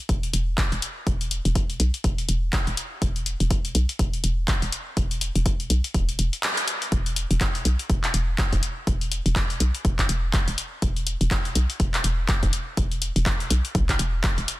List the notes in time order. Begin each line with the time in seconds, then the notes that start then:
0.09 E1, kick, closed hi-hat
0.23 closed hi-hat
0.33 E1, closed hi-hat
0.58 kick, clap, closed hi-hat
0.72 E1, closed hi-hat
0.82 closed hi-hat
1.07 E1, kick, closed hi-hat
1.21 closed hi-hat
1.31 closed hi-hat
1.45 E1, closed hi-hat
1.55 kick, closed hi-hat
1.70 closed hi-hat
1.80 B1, closed hi-hat
1.94 closed hi-hat
2.04 E1, kick, closed hi-hat
2.18 closed hi-hat
2.29 E1, closed hi-hat
2.53 kick, clap, closed hi-hat
2.67 E1, closed hi-hat
2.77 closed hi-hat
3.02 E1, kick, closed hi-hat
3.16 closed hi-hat
3.26 closed hi-hat
3.40 E1, closed hi-hat
3.51 kick, closed hi-hat
3.65 closed hi-hat
3.75 B1, closed hi-hat
3.89 closed hi-hat
3.99 E1, kick, closed hi-hat
4.13 closed hi-hat
4.24 E1, closed hi-hat
4.48 kick, clap, closed hi-hat
4.62 E1, closed hi-hat
4.72 closed hi-hat
4.97 E1, kick, closed hi-hat
5.11 closed hi-hat
5.21 closed hi-hat
5.35 E1, closed hi-hat
5.46 kick, closed hi-hat
5.60 closed hi-hat
5.70 B1, closed hi-hat
5.84 closed hi-hat
5.94 D1, kick, closed hi-hat
6.09 closed hi-hat
6.19 E1, closed hi-hat
6.33 closed hi-hat
6.43 clap, closed hi-hat
6.57 closed hi-hat
6.68 closed hi-hat
6.82 closed hi-hat
6.92 E1, kick, closed hi-hat
7.06 closed hi-hat
7.16 closed hi-hat
7.31 E1, closed hi-hat
7.41 kick, clap, closed hi-hat
7.55 closed hi-hat
7.65 B1, closed hi-hat
7.79 closed hi-hat
7.90 E1, kick, closed hi-hat
8.04 clap, closed hi-hat
8.14 E1, closed hi-hat
8.38 kick, clap, closed hi-hat
8.53 E1, kick, closed hi-hat
8.63 closed hi-hat
8.87 E1, kick, closed hi-hat
9.01 closed hi-hat
9.12 closed hi-hat
9.26 E1, closed hi-hat
9.36 kick, clap, closed hi-hat
9.50 closed hi-hat
9.60 B1, closed hi-hat
9.75 closed hi-hat
9.85 E1, kick, closed hi-hat
9.99 kick, clap, closed hi-hat
10.09 E1, closed hi-hat
10.33 kick, clap, closed hi-hat
10.48 E1, closed hi-hat
10.58 closed hi-hat
10.82 E1, kick, closed hi-hat
10.96 closed hi-hat
11.07 closed hi-hat
11.21 E1, closed hi-hat
11.31 kick, clap, closed hi-hat
11.45 closed hi-hat
11.55 B1, closed hi-hat
11.70 closed hi-hat
11.80 E1, kick, closed hi-hat
11.94 clap, closed hi-hat
12.04 E1, closed hi-hat
12.29 kick, clap, closed hi-hat
12.43 E1, kick, closed hi-hat
12.53 closed hi-hat
12.77 E1, kick, closed hi-hat
12.92 closed hi-hat
13.02 closed hi-hat
13.16 E1, closed hi-hat
13.26 kick, clap, closed hi-hat
13.40 closed hi-hat
13.50 B1, closed hi-hat
13.65 closed hi-hat
13.75 B1, kick, closed hi-hat
13.89 kick, clap, closed hi-hat
13.99 E1, closed hi-hat
14.24 kick, clap, closed hi-hat
14.38 E1, closed hi-hat
14.48 closed hi-hat